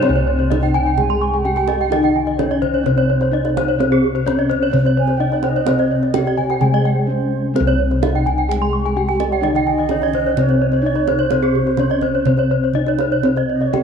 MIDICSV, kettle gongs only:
0, 0, Header, 1, 2, 480
1, 0, Start_track
1, 0, Tempo, 469851
1, 33, Time_signature, 4, 2, 24, 8
1, 11553, Tempo, 487013
1, 14040, End_track
2, 0, Start_track
2, 0, Title_t, "Kettle gongs"
2, 0, Program_c, 0, 14
2, 0, Note_on_c, 0, 48, 66
2, 37, Note_on_c, 0, 60, 53
2, 93, Note_on_c, 0, 36, 84
2, 476, Note_off_c, 0, 48, 0
2, 521, Note_on_c, 0, 61, 44
2, 603, Note_off_c, 0, 61, 0
2, 1434, Note_off_c, 0, 60, 0
2, 1482, Note_on_c, 0, 61, 35
2, 1563, Note_off_c, 0, 61, 0
2, 1966, Note_on_c, 0, 63, 59
2, 2449, Note_on_c, 0, 61, 39
2, 2531, Note_off_c, 0, 61, 0
2, 2902, Note_off_c, 0, 36, 0
2, 2920, Note_on_c, 0, 48, 60
2, 3359, Note_off_c, 0, 63, 0
2, 3403, Note_on_c, 0, 61, 40
2, 3484, Note_off_c, 0, 61, 0
2, 3878, Note_on_c, 0, 60, 55
2, 4316, Note_off_c, 0, 48, 0
2, 4363, Note_on_c, 0, 61, 41
2, 4445, Note_off_c, 0, 61, 0
2, 4841, Note_on_c, 0, 48, 56
2, 5275, Note_off_c, 0, 60, 0
2, 5319, Note_on_c, 0, 61, 37
2, 5400, Note_off_c, 0, 61, 0
2, 5802, Note_on_c, 0, 60, 51
2, 6237, Note_off_c, 0, 48, 0
2, 6279, Note_on_c, 0, 61, 47
2, 6361, Note_off_c, 0, 61, 0
2, 6762, Note_on_c, 0, 48, 61
2, 7197, Note_off_c, 0, 60, 0
2, 7250, Note_on_c, 0, 61, 38
2, 7332, Note_off_c, 0, 61, 0
2, 7716, Note_on_c, 0, 60, 43
2, 7767, Note_on_c, 0, 36, 83
2, 8157, Note_off_c, 0, 48, 0
2, 8193, Note_on_c, 0, 61, 40
2, 8275, Note_off_c, 0, 61, 0
2, 9114, Note_off_c, 0, 60, 0
2, 9153, Note_on_c, 0, 61, 34
2, 9235, Note_off_c, 0, 61, 0
2, 9629, Note_on_c, 0, 63, 52
2, 10115, Note_on_c, 0, 61, 38
2, 10197, Note_off_c, 0, 61, 0
2, 10580, Note_off_c, 0, 36, 0
2, 10595, Note_on_c, 0, 48, 60
2, 11031, Note_off_c, 0, 63, 0
2, 11068, Note_on_c, 0, 61, 37
2, 11149, Note_off_c, 0, 61, 0
2, 11553, Note_on_c, 0, 60, 48
2, 11982, Note_off_c, 0, 48, 0
2, 12023, Note_on_c, 0, 61, 44
2, 12102, Note_off_c, 0, 61, 0
2, 12492, Note_on_c, 0, 48, 53
2, 12932, Note_off_c, 0, 60, 0
2, 12972, Note_on_c, 0, 61, 34
2, 13051, Note_off_c, 0, 61, 0
2, 13457, Note_on_c, 0, 60, 51
2, 13911, Note_off_c, 0, 48, 0
2, 13955, Note_on_c, 0, 61, 44
2, 14034, Note_off_c, 0, 61, 0
2, 14040, Note_off_c, 0, 60, 0
2, 14040, End_track
0, 0, End_of_file